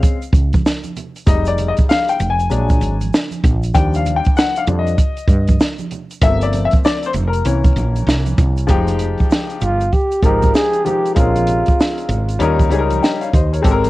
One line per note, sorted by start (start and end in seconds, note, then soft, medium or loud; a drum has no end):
0.00 0.16 G#3 medium
0.00 0.16 C4 medium
0.00 0.15 C#4 medium
0.00 0.20 F5 medium
0.00 kick loud
0.00 closed hi-hat medium
0.04 shaker medium
0.22 closed hi-hat soft
0.22 shaker medium
0.33 0.61 C#2 medium
0.33 kick loud
0.33 closed hi-hat medium
0.33 shaker soft
0.53 kick loud
0.53 closed hi-hat medium
0.53 high conga medium
0.53 shaker soft
0.66 snare medium
0.66 shaker medium
0.84 closed hi-hat soft
0.84 high conga medium
0.84 shaker soft
0.97 closed hi-hat medium
0.97 low conga medium
0.97 shaker soft
1.16 closed hi-hat medium
1.16 shaker medium
1.26 1.72 F1 loud
1.26 2.16 G3 medium
1.26 2.16 G#3 medium
1.26 2.16 D#4 medium
1.26 1.49 D#5 medium
1.26 kick loud
1.26 closed hi-hat medium
1.26 shaker medium
1.45 1.69 D5 medium
1.45 closed hi-hat medium
1.45 shaker soft
1.58 closed hi-hat medium
1.58 high conga soft
1.58 low conga medium
1.58 shaker soft
1.69 1.74 D#5 medium
1.77 kick medium
1.77 closed hi-hat soft
1.77 shaker soft
1.89 2.10 F5 loud
1.89 snare loud
1.89 high conga soft
1.89 shaker medium
2.08 2.31 G5 medium
2.08 closed hi-hat medium
2.08 shaker soft
2.20 2.48 F1 loud
2.20 closed hi-hat medium
2.20 low conga medium
2.20 shaker medium
2.30 3.19 G#5 loud
2.39 closed hi-hat soft
2.39 shaker soft
2.50 2.79 A#1 medium
2.50 2.94 F#3 medium
2.50 2.94 G#3 medium
2.50 2.95 D4 medium
2.50 closed hi-hat medium
2.50 shaker medium
2.70 kick medium
2.70 closed hi-hat medium
2.70 shaker soft
2.81 3.09 G#1 medium
2.81 closed hi-hat medium
2.81 shaker soft
3.01 closed hi-hat medium
3.01 high conga medium
3.01 shaker soft
3.14 snare loud
3.14 shaker medium
3.31 closed hi-hat medium
3.31 high conga medium
3.31 shaker soft
3.44 3.71 A#1 loud
3.44 kick loud
3.44 closed hi-hat medium
3.44 low conga medium
3.44 shaker soft
3.63 closed hi-hat medium
3.63 shaker medium
3.74 4.19 D#2 loud
3.74 4.63 F3 medium
3.74 4.63 G3 medium
3.74 4.63 D4 medium
3.74 3.94 G5 loud
3.74 kick loud
3.74 closed hi-hat loud
3.74 shaker medium
3.93 4.17 F5 medium
3.93 closed hi-hat medium
3.93 shaker soft
4.06 closed hi-hat medium
4.06 high conga medium
4.06 low conga medium
4.06 shaker medium
4.16 4.37 G5 loud
4.24 kick medium
4.24 closed hi-hat medium
4.24 shaker soft
4.37 4.58 F#5 loud
4.37 snare loud
4.37 high conga soft
4.37 shaker medium
4.56 4.62 F5 medium
4.56 closed hi-hat medium
4.56 shaker soft
4.67 4.95 F2 loud
4.67 4.95 F3 soft
4.67 4.95 G3 soft
4.67 4.96 D4 medium
4.67 closed hi-hat medium
4.67 low conga medium
4.67 shaker medium
4.79 5.67 D#5 medium
4.87 closed hi-hat soft
4.87 shaker soft
4.98 kick loud
4.98 closed hi-hat medium
4.98 shaker medium
5.17 closed hi-hat soft
5.17 shaker medium
5.28 5.56 G2 medium
5.28 kick loud
5.28 closed hi-hat medium
5.28 shaker soft
5.48 kick medium
5.48 closed hi-hat medium
5.48 high conga medium
5.48 shaker soft
5.60 snare loud
5.60 shaker medium
5.78 closed hi-hat soft
5.78 high conga medium
5.78 shaker soft
5.91 closed hi-hat medium
5.91 low conga medium
5.91 shaker soft
6.11 closed hi-hat medium
6.11 shaker soft
6.21 6.66 G1 loud
6.21 7.41 F3 medium
6.21 7.42 A3 medium
6.21 7.42 A#3 medium
6.21 7.42 C4 medium
6.21 6.44 E5 loud
6.21 kick loud
6.21 closed hi-hat loud
6.21 shaker medium
6.41 6.62 D5 medium
6.41 closed hi-hat medium
6.41 shaker soft
6.53 closed hi-hat medium
6.53 high conga soft
6.53 low conga medium
6.53 shaker soft
6.65 6.70 E5 loud
6.71 kick medium
6.71 closed hi-hat soft
6.71 shaker soft
6.85 7.05 D5 loud
6.85 snare loud
6.85 high conga soft
6.85 shaker medium
7.03 7.11 C5 medium
7.03 closed hi-hat medium
7.03 shaker soft
7.13 7.42 F1 loud
7.13 closed hi-hat medium
7.13 low conga medium
7.13 shaker medium
7.28 8.15 A#4 medium
7.33 closed hi-hat soft
7.33 shaker medium
7.45 7.73 C2 loud
7.45 8.65 E3 medium
7.45 8.65 A#3 medium
7.45 8.66 C#4 medium
7.45 closed hi-hat medium
7.45 shaker medium
7.64 kick loud
7.64 closed hi-hat soft
7.64 shaker soft
7.76 8.04 A#1 medium
7.76 closed hi-hat medium
7.76 shaker soft
7.96 closed hi-hat soft
7.96 high conga medium
7.96 shaker soft
8.07 8.35 C2 medium
8.07 snare medium
8.07 shaker medium
8.26 closed hi-hat soft
8.26 high conga medium
8.26 shaker soft
8.38 8.66 C2 medium
8.38 kick loud
8.38 closed hi-hat medium
8.38 low conga medium
8.38 shaker soft
8.57 closed hi-hat medium
8.57 shaker medium
8.67 9.14 F1 loud
8.67 9.81 F3 medium
8.67 9.82 G#3 medium
8.67 9.82 D#4 medium
8.67 9.83 G4 loud
8.67 kick loud
8.67 closed hi-hat loud
8.67 shaker medium
8.88 closed hi-hat medium
8.88 high conga medium
8.88 shaker soft
8.99 closed hi-hat medium
8.99 low conga medium
8.99 shaker soft
9.18 kick medium
9.18 closed hi-hat soft
9.18 shaker soft
9.31 snare loud
9.31 high conga medium
9.31 shaker medium
9.50 closed hi-hat medium
9.50 shaker soft
9.61 9.90 G1 medium
9.61 9.95 F4 medium
9.61 closed hi-hat medium
9.61 low conga medium
9.61 shaker medium
9.81 closed hi-hat soft
9.81 shaker soft
9.93 10.25 G4 medium
9.93 kick medium
9.93 closed hi-hat medium
9.93 shaker medium
10.12 closed hi-hat soft
10.12 shaker soft
10.23 10.51 G#1 medium
10.23 10.80 F3 medium
10.23 10.81 G#3 medium
10.23 10.81 D#4 medium
10.23 10.81 G4 medium
10.23 10.56 A#4 medium
10.23 kick loud
10.23 closed hi-hat medium
10.23 shaker soft
10.42 kick medium
10.42 closed hi-hat soft
10.42 high conga medium
10.42 shaker soft
10.55 10.86 G#4 loud
10.55 snare loud
10.55 shaker medium
10.73 closed hi-hat soft
10.73 shaker soft
10.85 11.13 F3 medium
10.85 11.13 G#3 medium
10.85 11.14 D#4 medium
10.85 11.15 G4 loud
10.85 11.15 G4 medium
10.85 closed hi-hat medium
10.85 low conga medium
10.85 shaker soft
11.06 closed hi-hat soft
11.06 shaker soft
11.15 11.62 A#1 medium
11.15 12.29 G#3 medium
11.15 12.29 C4 medium
11.15 12.30 C#4 medium
11.15 12.36 F4 medium
11.15 12.30 A#4 medium
11.15 kick loud
11.15 closed hi-hat medium
11.15 shaker medium
11.36 closed hi-hat medium
11.36 high conga medium
11.36 shaker soft
11.47 closed hi-hat medium
11.47 low conga medium
11.47 shaker soft
11.66 kick medium
11.66 closed hi-hat soft
11.66 shaker soft
11.80 snare loud
11.80 high conga soft
11.80 shaker medium
11.98 closed hi-hat medium
11.98 shaker soft
12.09 12.37 G#1 loud
12.09 closed hi-hat medium
12.09 low conga medium
12.09 shaker soft
12.29 closed hi-hat soft
12.29 shaker medium
12.39 12.68 D#2 loud
12.39 12.68 G3 medium
12.39 12.69 C#4 medium
12.39 12.69 D#4 medium
12.39 12.70 A#4 loud
12.39 closed hi-hat medium
12.39 shaker medium
12.59 kick medium
12.59 closed hi-hat soft
12.59 shaker soft
12.70 12.99 C#2 medium
12.70 13.27 G3 medium
12.70 13.28 C#4 medium
12.70 13.28 D#4 medium
12.70 12.80 G#4 medium
12.70 closed hi-hat medium
12.70 shaker soft
12.79 13.06 A#4 loud
12.91 closed hi-hat soft
12.91 high conga medium
12.91 shaker soft
13.03 13.21 D#5 medium
13.03 13.21 G5 medium
13.03 snare medium
13.03 shaker medium
13.21 13.33 C#5 medium
13.21 13.33 F5 medium
13.21 closed hi-hat soft
13.21 shaker soft
13.33 13.61 D#2 medium
13.33 13.52 C5 medium
13.33 13.51 D#5 medium
13.33 kick loud
13.33 closed hi-hat medium
13.33 low conga medium
13.33 shaker soft
13.53 13.70 A#4 medium
13.53 13.82 C#5 medium
13.53 closed hi-hat medium
13.53 shaker soft
13.62 13.90 G#1 loud
13.62 13.90 G#3 medium
13.62 13.90 C4 medium
13.62 13.90 G4 medium
13.62 13.72 A4 medium
13.62 kick loud
13.62 closed hi-hat medium
13.66 shaker medium
13.71 13.90 A#4 loud
13.84 closed hi-hat medium
13.84 high conga medium
13.84 shaker soft